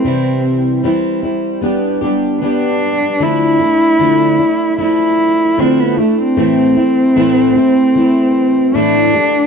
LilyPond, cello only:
\new Staff \with { instrumentName = "Cello" } { \time 4/4 \key a \minor \tempo 4 = 76 c'4 r2 d'4 | e'2 e'4 c'16 b16 a16 c'16~ | c'2. d'4 | }